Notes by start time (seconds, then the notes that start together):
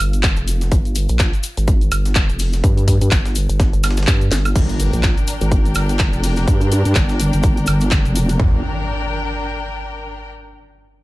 Already playing: A#3 G4 F5
0.00 G1, closed hi-hat, open hi-hat, cabasa, high woodblock
0.13 closed hi-hat, cabasa
0.23 kick, snare, clap, closed hi-hat, open hi-hat, cabasa
0.36 F1, closed hi-hat, cabasa
0.48 closed hi-hat, open hi-hat, cabasa
0.61 snare, closed hi-hat, cabasa
0.72 G1, kick, closed hi-hat, cabasa
0.85 closed hi-hat, cabasa
0.95 closed hi-hat, open hi-hat, cabasa
1.09 A#1, closed hi-hat, cabasa
1.19 kick, snare, clap, closed hi-hat, cabasa
1.33 closed hi-hat, cabasa
1.43 closed hi-hat, open hi-hat, cabasa
1.57 G#1, closed hi-hat, cabasa
1.68 kick, closed hi-hat, cabasa
1.81 closed hi-hat, cabasa
1.92 G1, closed hi-hat, open hi-hat, cabasa, high woodblock
2.05 snare, closed hi-hat, cabasa
2.15 kick, snare, clap, closed hi-hat, cabasa
2.29 F1, closed hi-hat, cabasa
2.39 open hi-hat, cabasa
2.53 snare, closed hi-hat, cabasa
2.64 G2, kick, closed hi-hat, cabasa
2.77 closed hi-hat, cabasa
2.88 kick, closed hi-hat, open hi-hat, cabasa
3.01 G2, closed hi-hat, cabasa
3.11 G1, kick, snare, clap, closed hi-hat, cabasa
3.25 snare, closed hi-hat, cabasa
3.35 closed hi-hat, open hi-hat, cabasa
3.49 G1, closed hi-hat, cabasa
3.60 kick, snare, closed hi-hat, cabasa
3.73 G1, closed hi-hat, cabasa
3.83 snare, closed hi-hat, open hi-hat, cabasa, high woodblock
3.90 snare, closed hi-hat
3.97 snare, closed hi-hat, cabasa
4.03 snare, closed hi-hat
4.07 G2, kick, snare, clap, closed hi-hat, open hi-hat, cabasa
4.21 closed hi-hat, cabasa
4.31 G1, snare, closed hi-hat, open hi-hat, cabasa
4.45 snare, closed hi-hat, cabasa, high woodblock
4.56 G1 D4, kick, closed hi-hat, crash, impact, cabasa
4.63 A#4
4.69 closed hi-hat, cabasa
4.74 G5
4.80 closed hi-hat, open hi-hat, cabasa
4.93 A#1, closed hi-hat, cabasa
5.03 kick, snare, clap, closed hi-hat, cabasa
5.17 closed hi-hat, cabasa
5.27 closed hi-hat, open hi-hat, cabasa
5.41 G#1, closed hi-hat, cabasa
5.51 kick, closed hi-hat, cabasa
5.65 closed hi-hat, cabasa
5.75 G1, closed hi-hat, open hi-hat, cabasa, high woodblock
5.89 snare, closed hi-hat, cabasa
5.99 kick, snare, clap, closed hi-hat, cabasa
6.13 F1, closed hi-hat, cabasa
6.24 open hi-hat, cabasa
6.36 snare, closed hi-hat, cabasa
6.48 G2, kick, closed hi-hat, cabasa
6.61 closed hi-hat, cabasa
6.72 closed hi-hat, open hi-hat, cabasa
6.85 G2, closed hi-hat, cabasa
6.95 G1, kick, snare, clap, closed hi-hat, cabasa
7.09 snare, closed hi-hat, cabasa
7.20 closed hi-hat, open hi-hat, cabasa
7.33 G1, closed hi-hat, cabasa
7.43 kick, closed hi-hat, cabasa
7.57 closed hi-hat, cabasa
7.66 G1, closed hi-hat, open hi-hat, cabasa, high woodblock
7.81 closed hi-hat, cabasa
7.91 kick, snare, clap, closed hi-hat, open hi-hat, cabasa
8.05 F1, closed hi-hat, cabasa
8.15 closed hi-hat, open hi-hat, cabasa
8.29 snare, closed hi-hat, cabasa
8.39 G1 D4, kick, floor tom, impact
8.48 A#4
8.56 G5